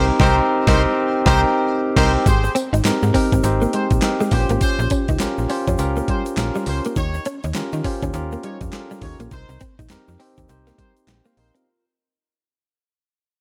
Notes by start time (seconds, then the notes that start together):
Already playing: C2 C4 D#4 G4 A#4
0.20 C2 C4 D#4 G4 A#4 C5, kick, snare
0.67 C2 C4 D#4 G4 A#4 C5, kick, snare
1.26 C2 C4 D#4 G4 A#4 C5, kick, snare
1.96 C2 C4 D#4 G4 A#4 C5, kick, snare, crash
2.26 G#1 G4 G#4 C5, kick, closed hi-hat, tambourine, shaker
2.44 muted clean electric guitar stroke, shaker
2.55 C4, closed hi-hat, tambourine, shaker
2.73 G#1 D#4, closed hi-hat, shaker
2.84 G#2 C4 D#4 G4 A#4, muted clean electric guitar stroke, snare, clap, closed hi-hat, tambourine, shaker
3.03 G#2, shaker
3.14 C4 D#4 G4 A#4, kick, open hi-hat, tambourine
3.32 G#1 C4, kick, closed hi-hat, shaker
3.43 G#1 C4 D#4 G4 C5, muted clean electric guitar stroke, closed hi-hat, tambourine, shaker
3.62 A#3, shaker
3.73 G#3 G4 G#4 C5, closed hi-hat
3.90 A#1, kick, closed hi-hat, shaker
4.02 C4 D#4 G4 A#4, snare, clap, closed hi-hat, tambourine, shaker
4.21 G#3, shaker
4.31 A#1 C#4 F4 G4 B4 C5, muted clean electric guitar stroke, kick, open hi-hat, tambourine
4.40 C5
4.49 G#1 A#3, closed hi-hat, shaker
4.61 C#4 G4 C5, kick, closed hi-hat, tambourine, shaker
4.79 A#1, muted clean electric guitar stroke, shaker
4.90 C#4, kick, closed hi-hat, tambourine, shaker
5.08 C#2 D#4, kick, closed hi-hat, shaker
5.19 A#1 C#4 F4 G4 A#4, muted clean electric guitar stroke, snare, clap, closed hi-hat, tambourine, shaker
5.38 A#1, shaker
5.49 C#4 F4 G4 C5, open hi-hat, tambourine
5.67 F2 C#4, kick, closed hi-hat, shaker
5.78 C#2 C#4 F4 G4 A#4, muted clean electric guitar stroke, closed hi-hat, tambourine, shaker
5.96 A#3, shaker
6.08 G3 C#4 G4 C5, kick, closed hi-hat
6.26 closed hi-hat, shaker
6.37 A#1 C#4 F4 G4 A#4, snare, clap, closed hi-hat, tambourine, shaker
6.55 G3, shaker
6.66 C#2 C#4 G4 C5, muted clean electric guitar stroke, open hi-hat, tambourine
6.85 A#3, closed hi-hat, shaker
6.96 D#2 D#4 G4 C#5, kick, closed hi-hat, shaker
7.14 muted clean electric guitar stroke, shaker
7.25 C#4, closed hi-hat, shaker
7.44 D#2 D#4, closed hi-hat, shaker
7.54 D#3 C#4 F4 G4 A#4, muted clean electric guitar stroke, snare, clap, closed hi-hat, shaker
7.73 D#3, shaker
7.84 C#4 F4 G4 C5, kick, open hi-hat
8.03 D#2 C#4, kick, closed hi-hat, shaker
8.14 D#2 C#4 F4 G4 A#4, muted clean electric guitar stroke, closed hi-hat, shaker
8.32 A#3, shaker
8.43 G3 D#4 G4 C#5, closed hi-hat
8.61 F2, kick, closed hi-hat, shaker
8.72 C#4 F4 G4 A4, snare, clap, closed hi-hat, shaker
8.80 A#4
8.91 G3, shaker
9.01 D#2 D#4 G4 C#5, muted clean electric guitar stroke, kick, open hi-hat
9.20 A#1 A#3, closed hi-hat, shaker
9.31 C2 D#4 A#4 C5, kick, closed hi-hat, shaker
9.49 C2, muted clean electric guitar stroke, shaker
9.60 C4, kick, closed hi-hat, shaker
9.79 A#1 D#4, kick, closed hi-hat, shaker
9.89 C4 D#4 G4 A#4, muted clean electric guitar stroke, snare, clap, closed hi-hat, shaker
10.08 F2, shaker
10.20 C4 D#4 G4 C5, open hi-hat
10.38 D#2 C4, kick, closed hi-hat, shaker
10.49 C2 C4 D#4 G4 C5, muted clean electric guitar stroke, closed hi-hat, shaker
10.67 A#3, snare, shaker
10.78 G3 D#4 A#4 C5, kick, closed hi-hat
10.97 closed hi-hat, shaker
11.07 A#1 C5 G5, snare, clap, closed hi-hat, shaker
11.25 A#3 C5 F5, shaker
11.37 A#1 D#4 A#4 C5 D#5, muted clean electric guitar stroke, open hi-hat
11.55 C4 F4 A#4, closed hi-hat, shaker